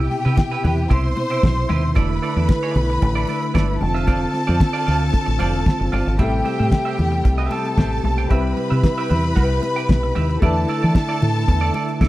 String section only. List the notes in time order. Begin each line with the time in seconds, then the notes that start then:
Already playing: G4 G5
0.90 C5 C6
1.96 B4 B5
3.81 A4 A5
6.19 G4 G5
7.51 A4 A5
8.30 B4 B5
10.42 A4 A5